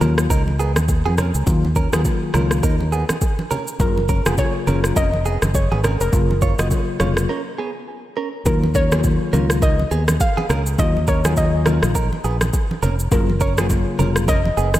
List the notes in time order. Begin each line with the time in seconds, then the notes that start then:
0.01 D#2 D#3 F#3 A#3 C#4 F4 A#4, high conga, low conga, shaker
0.18 cross-stick, shaker
0.30 C#2 D#4 A#4, kick, shaker
0.47 high conga
0.59 B3 G#4, shaker
0.76 D#2, cross-stick, high conga, shaker
0.88 kick, shaker
1.06 F2 B3 G#4, high conga
1.18 C#4 A#4, cross-stick, low conga, shaker
1.35 C#2, shaker
1.47 D#2 D#3 F#3 A#3 F4, kick, low conga, shaker
1.65 high conga
1.76 C#4 A#4, kick, shaker
1.93 D#2 D#3 F#3 A#3 B3 F4 G#4, cross-stick, high conga, shaker
2.05 kick, low conga, shaker
2.34 C#2 D#3 F#3 A#3 C#4 F4 A#4, cross-stick, high conga, low conga, shaker
2.51 cross-stick, shaker
2.63 D#2 D#4 A#4, kick, shaker
2.80 high conga
2.92 B3 G#4, shaker
3.09 cross-stick, high conga, shaker
3.21 kick, shaker
3.39 high conga
3.51 C#4 A#4, low conga, shaker
3.68 shaker
3.80 F#1 C#3 F#3 A#3 F4 A#4, kick, low conga, shaker
3.98 high conga
4.09 C#4 A#4, kick, shaker
4.26 F1 C#3 F#3 A#3 B3 F4 G#4, cross-stick, high conga, shaker
4.38 C#5, kick, low conga, shaker
4.67 F#1 C#3 F#3 A#3 C#4 F4 A#4, high conga, low conga, shaker
4.84 cross-stick, shaker
4.96 F1 C#4 A#4 D#5, kick, shaker
5.14 high conga
5.26 B3 G#4, shaker
5.42 F#1, cross-stick, high conga, shaker
5.54 C#5, kick, shaker
5.72 G#1 B3 G#4, high conga
5.84 C#4 A#4, cross-stick, low conga, shaker
6.01 F1 A#4, shaker
6.13 F#1 C#3 F#3 A#3 F4, kick, low conga, shaker
6.31 high conga
6.42 F4 C#5, kick, shaker
6.59 F#1 C#3 F#3 A#3 F4 F#4 D#5, cross-stick, high conga, shaker
6.71 kick, low conga, shaker
7.00 F1 C#3 F#3 A#3 F4 C#5, cross-stick, high conga, low conga, shaker
7.17 cross-stick, shaker
7.29 C#4 A#4
7.58 B3 G#4
8.17 C#4 A#4
8.46 D#2 D#3 F#3 A#3 F4 A#4, kick, low conga, shaker
8.64 high conga
8.75 C#4 A#4 C#5, kick, shaker
8.92 D#3 F#3 A#3 B3 F4 G#4, cross-stick, high conga, shaker
9.04 kick, low conga, shaker
9.33 C#2 D#3 F#3 A#3 C#4 F4 A#4, high conga, low conga, shaker
9.50 cross-stick, shaker
9.62 D#4 A#4 D#5, kick, shaker
9.79 high conga
9.91 D#2 B3 G#4, shaker
10.08 cross-stick, high conga, shaker
10.20 F5, kick, shaker
10.37 B3 G#4, high conga
10.50 C#2 C#4 A#4, cross-stick, low conga, shaker
10.66 shaker
10.78 D#2 D#3 F#3 A#3 F4 D#5, kick, low conga, shaker
10.97 high conga
11.07 C#4 A#4 C#5, kick, shaker
11.24 D#3 F#3 A#3 B3 F4 G#4, cross-stick, high conga, shaker
11.37 D#5, kick, low conga, shaker
11.66 D#3 F#3 A#3 C#4 F4 A#4, cross-stick, high conga, low conga, shaker
11.83 A#1, cross-stick, shaker
11.95 D#4 A#4, kick, shaker
12.13 high conga
12.24 A#1 B3 G#4, shaker
12.41 cross-stick, high conga, shaker
12.53 kick, shaker
12.71 high conga
12.82 F1 C#4 A#4, low conga, shaker
12.99 shaker
13.11 F#1 C#3 F#3 A#3 F4 A#4, kick, low conga, shaker
13.30 high conga
13.40 C#4 A#4 C#5, kick, shaker
13.57 C#3 F#3 A#3 B3 F4 G#4, cross-stick, high conga, shaker
13.70 kick, low conga, shaker
13.99 F1 C#3 F#3 A#3 C#4 F4 A#4, high conga, low conga, shaker
14.16 cross-stick, shaker
14.28 C#4 A#4 D#5, kick, shaker
14.45 high conga
14.57 F#1 B3 G#4, shaker
14.74 cross-stick, high conga, shaker